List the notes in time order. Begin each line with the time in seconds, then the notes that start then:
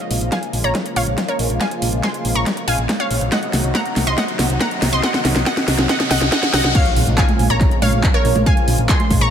Already playing: C#3 F3 G#3 A#3 F4 C#5 F5, riser
0.11 A#1, open hi-hat
0.21 A#1, closed hi-hat
0.32 F5 G#5, kick, snare, closed hi-hat
0.43 closed hi-hat
0.53 A#1, open hi-hat
0.64 A#1 C#5 A#5, closed hi-hat
0.75 kick, snare, closed hi-hat
0.86 closed hi-hat
0.96 A#1 C#5 F5, open hi-hat
1.07 A#1, closed hi-hat
1.18 kick, snare, closed hi-hat
1.28 A#4 C#5, closed hi-hat
1.39 A#1, open hi-hat
1.50 A#1, closed hi-hat
1.61 F5 G#5, kick, snare, closed hi-hat
1.71 closed hi-hat
1.82 A#1, open hi-hat
1.93 A#1, closed hi-hat
2.03 G#5 C6, kick, snare, closed hi-hat
2.14 closed hi-hat
2.25 A#1, open hi-hat
2.35 A#1 A#5 C#6, closed hi-hat
2.46 kick, snare, closed hi-hat
2.57 closed hi-hat
2.68 A#1 F5 G#5, open hi-hat
2.78 A#1, closed hi-hat
2.89 kick, snare, closed hi-hat
3.00 C#5 F5, closed hi-hat
3.11 A#1, open hi-hat
3.21 A#1, closed hi-hat
3.32 C3 D#3 F#3 D#4 F#4 D#5 F#5, kick, snare, closed hi-hat
3.43 closed hi-hat
3.53 C2, snare, open hi-hat
3.64 C2, closed hi-hat
3.75 F#5 A#5, kick, snare, closed hi-hat
3.86 closed hi-hat
3.96 C2, snare, open hi-hat
4.07 C2 D#5 C6, closed hi-hat
4.18 D#5 F#5, kick, snare, closed hi-hat
4.28 closed hi-hat
4.39 C2, snare, open hi-hat
4.50 C2, closed hi-hat
4.61 F#5 A#5, kick, snare, closed hi-hat
4.71 closed hi-hat
4.82 C2, snare, open hi-hat
4.93 C2 D#5 C6
5.03 D#5 F#5, kick, snare, closed hi-hat
5.14 snare, closed hi-hat
5.25 C2, snare, open hi-hat
5.36 C2, snare, closed hi-hat
5.46 D#5 F#5, kick, snare, closed hi-hat
5.57 snare, closed hi-hat
5.68 C2, snare, open hi-hat
5.79 C2, snare
5.89 D#5 F#5, kick, snare, closed hi-hat
6.00 snare, closed hi-hat
6.11 C2 D#5 F#5, snare, open hi-hat
6.21 C2, snare, closed hi-hat
6.32 D#5 F#5, kick, snare, closed hi-hat
6.43 snare, closed hi-hat
6.53 C2 D#5 F#5, snare, open hi-hat
6.64 C2, snare
6.75 C#3 F3 G#3 A#3 F4 C#5 F5, kick, closed hi-hat, crash, impact
6.86 closed hi-hat
6.96 A#1, open hi-hat
7.07 A#1, closed hi-hat
7.18 F5 G#5, kick, clap, closed hi-hat
7.29 closed hi-hat, high conga
7.39 A#1, open hi-hat
7.50 A#1 C#5 A#5, closed hi-hat
7.61 kick, clap, closed hi-hat
7.71 closed hi-hat
7.82 A#1 C#5 F5, open hi-hat, high conga
7.93 A#1, closed hi-hat
8.04 kick, clap, closed hi-hat
8.14 A#4 C#5, closed hi-hat
8.25 A#1, open hi-hat
8.36 A#1, closed hi-hat, high conga
8.46 F5 G#5, kick, closed hi-hat
8.57 closed hi-hat
8.68 A#1, open hi-hat
8.78 A#1, closed hi-hat
8.89 G#5 C6, kick, clap, closed hi-hat
9.00 closed hi-hat, high conga
9.11 A#1, kick, open hi-hat
9.21 A#1 A#5 C#6, closed hi-hat